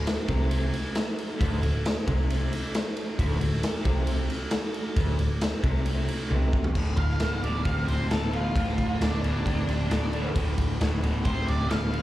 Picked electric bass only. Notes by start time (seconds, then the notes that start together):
0.28 C2
1.41 D1
1.62 D1
2.07 C2
3.19 D1
3.41 D1
3.86 C2
4.97 D1
5.19 D1
5.64 C2
6.31 C2
6.75 D1
6.97 D1
7.21 D1
7.43 D1
7.65 D1
7.88 D1
8.11 D1
8.56 D1
8.78 D1
9.01 D1
9.23 D1
9.45 D1
9.68 D1
9.90 D1
10.36 D1
10.58 D1
10.81 D1
11.02 D1
11.26 D1
11.48 D1
11.71 D1